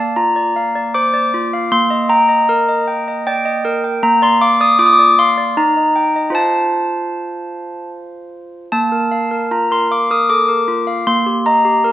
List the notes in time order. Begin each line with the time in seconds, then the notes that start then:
Already playing: A#3 D5 A5
0.16 F4 A#5
0.36 D5
0.56 F5
0.75 D5
0.94 C5 D6
1.14 D5
1.34 F4
1.53 F5
1.72 A#3 C6
1.90 D#5
2.09 G5 A#5
2.29 D#5
2.49 A#4
2.69 D#5
2.87 G5
3.08 D#5
3.27 D5 G5
3.45 D#5
3.65 A#4
3.84 G5
4.03 A#3 A#5
4.22 D5 C6
4.41 F5 D6
4.61 D5 D#6
4.79 F4 D6
4.86 D#6
4.93 D6
4.99 D5
5.19 F5 C6
5.38 D5
5.57 D#4 A#5
5.77 D#5
5.96 G5
6.16 D#5
6.30 F4 C5 F5
6.35 A5
8.72 A#3 A5
8.92 A#4
9.11 F5
9.31 A#4
9.51 F4 A#5
9.71 A#4 C6
9.91 F5 D6
10.11 A#4 D#6
10.29 A4 D6
10.48 A#4
10.68 F4
10.87 F5
11.07 A#3 C6
11.26 G4
11.46 D#5 A#5
11.65 G4
11.84 A#4